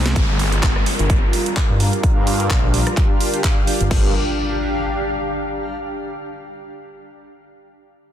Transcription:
0.00 0.14 C2 loud
0.00 0.12 G#3 medium
0.00 0.12 C4 medium
0.00 1.29 C4 medium
0.00 0.16 G#4 loud
0.00 0.12 C5 medium
0.00 0.16 D#5 medium
0.00 3.91 A#5 medium
0.06 snare medium
0.06 closed hi-hat medium
0.06 cabasa soft
0.16 0.38 G1 loud
0.16 3.87 G3 medium
0.16 3.90 D4 medium
0.16 3.87 F4 medium
0.16 3.87 A#4 medium
0.16 kick loud
0.16 closed hi-hat medium
0.16 downlifter medium
0.34 3.91 F5 medium
0.39 0.74 G1 loud
0.39 open hi-hat loud
0.52 closed hi-hat medium
0.57 3.91 G4 medium
0.63 kick loud
0.63 cross-stick medium
0.63 clap loud
0.63 closed hi-hat medium
0.76 cross-stick medium
0.86 open hi-hat loud
0.99 1.21 G1 medium
0.99 closed hi-hat medium
1.10 kick loud
1.10 closed hi-hat medium
1.33 open hi-hat loud
1.46 closed hi-hat medium
1.57 kick loud
1.57 clap loud
1.57 closed hi-hat medium
1.70 1.91 G2 medium
1.80 open hi-hat loud
1.93 closed hi-hat medium
2.03 kick loud
2.03 closed hi-hat medium
2.16 2.49 G2 loud
2.27 open hi-hat loud
2.40 closed hi-hat soft
2.50 2.85 A#1 loud
2.50 kick loud
2.50 cross-stick medium
2.50 clap loud
2.50 closed hi-hat medium
2.74 open hi-hat loud
2.87 cross-stick medium
2.87 closed hi-hat medium
2.97 kick loud
2.97 clap soft
2.97 closed hi-hat medium
3.21 open hi-hat loud
3.34 closed hi-hat medium
3.44 kick loud
3.44 clap loud
3.44 closed hi-hat medium
3.67 open hi-hat loud
3.81 3.89 G1 medium
3.81 closed hi-hat medium
3.91 4.13 G1 loud
3.91 5.75 D4 medium
3.91 kick loud
3.91 crash medium
3.91 impact medium
3.99 5.74 G4 medium
4.06 5.74 F5 medium
4.12 5.74 A#5 medium

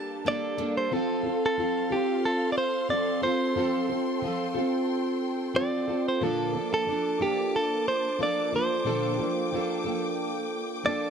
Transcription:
0.00 0.23 G3 soft
0.00 0.25 A#3 medium
0.00 0.88 A#3 medium
0.00 0.92 A#3 medium
0.00 0.26 D4 medium
0.00 0.57 D4 medium
0.00 0.88 G4 medium
0.00 0.26 A4 medium
0.00 0.27 A4 medium
0.00 0.89 A5 medium
0.00 1.49 A5 medium
0.25 0.58 G3 medium
0.25 0.59 A#3 medium
0.25 0.58 D4 medium
0.25 1.49 A4 medium
0.25 0.56 A4 medium
0.25 0.75 D5 loud
0.57 0.91 G3 soft
0.57 0.91 A#3 medium
0.57 0.99 D4 medium
0.57 0.92 D4 medium
0.57 0.91 A4 medium
0.77 0.93 C5 medium
0.91 1.25 F3 medium
0.91 1.25 C4 medium
0.91 1.23 F4 medium
0.91 6.17 A4 medium
0.91 1.44 A4 loud
0.91 1.22 A4 medium
0.91 3.54 F5 medium
0.91 6.17 C6 medium
1.23 1.57 C4 soft
1.23 1.58 F4 medium
1.23 1.57 A4 medium
1.46 1.94 A4 loud
1.57 1.91 F3 medium
1.57 1.91 C4 medium
1.57 1.91 F4 medium
1.57 1.89 A4 medium
1.90 2.88 C4 soft
1.90 2.91 F4 medium
1.90 2.23 G4 medium
1.90 2.91 A4 medium
2.25 2.50 A4 loud
2.52 2.57 D5 medium
2.58 2.88 C5 medium
2.89 3.23 F3 medium
2.89 3.23 C4 medium
2.89 3.23 F4 medium
2.89 3.20 A4 medium
2.89 3.23 D5 medium
3.21 3.55 C4 medium
3.21 3.55 F4 medium
3.21 3.56 A4 medium
3.21 4.52 C5 medium
3.55 3.89 F3 medium
3.55 3.90 C4 medium
3.55 3.89 F4 medium
3.55 3.88 A4 loud
3.55 6.19 G5 medium
3.89 4.21 C4 soft
3.89 4.22 F4 medium
3.89 4.22 A4 medium
4.22 4.55 F3 medium
4.22 4.56 C4 medium
4.22 4.55 F4 medium
4.22 4.53 A4 medium
4.55 5.53 C4 medium
4.55 5.56 F4 medium
4.55 5.57 A4 medium
5.54 5.88 F3 medium
5.54 5.88 C4 medium
5.54 5.88 F4 medium
5.54 5.86 A4 medium
5.54 6.08 D5 loud
5.87 6.21 C4 soft
5.87 6.22 F4 medium
5.87 6.21 A4 medium
6.08 6.23 C5 medium
6.20 6.54 A#2 medium
6.20 6.54 D3 medium
6.20 6.54 F3 medium
6.20 11.10 A#3 medium
6.20 6.54 A#3 medium
6.20 6.54 D4 medium
6.20 6.53 A4 loud
6.20 6.73 A4 loud
6.20 8.84 A5 medium
6.20 11.10 D6 medium
6.54 6.85 F3 soft
6.54 6.86 A#3 soft
6.54 6.87 D4 medium
6.54 6.87 A4 medium
6.74 7.23 A4 medium
6.86 7.20 F3 medium
6.86 7.21 A#3 medium
6.86 7.19 D4 medium
6.86 7.18 A4 medium
7.20 8.17 F3 soft
7.20 8.19 A#3 medium
7.20 8.20 D4 medium
7.20 7.55 G4 medium
7.20 8.19 A4 medium
7.56 7.86 A4 medium
7.88 8.21 C5 loud
8.19 8.52 F3 medium
8.19 8.53 A#3 medium
8.19 8.52 D4 medium
8.19 8.51 A4 medium
8.23 8.55 D5 medium
8.52 8.85 F3 medium
8.52 8.85 A#3 soft
8.52 8.85 D4 medium
8.52 8.86 A4 medium
8.52 9.83 C5 medium
8.84 9.18 A#2 medium
8.84 9.19 D3 medium
8.84 9.19 F3 medium
8.84 9.19 A#3 medium
8.84 9.19 D4 medium
8.84 9.17 A4 loud
8.84 11.10 G5 medium
9.18 9.51 F3 soft
9.18 9.52 A#3 medium
9.18 9.52 D4 medium
9.18 9.52 A4 medium
9.52 9.85 F3 medium
9.52 9.85 A#3 medium
9.52 9.84 D4 medium
9.52 9.83 A4 medium
9.84 10.82 F3 soft
9.84 10.83 A#3 medium
9.84 10.85 D4 medium
9.84 10.84 A4 medium
10.83 11.10 F3 medium
10.83 11.10 A#3 medium
10.83 11.10 D4 medium
10.83 11.10 A4 medium
10.83 11.10 D5 loud

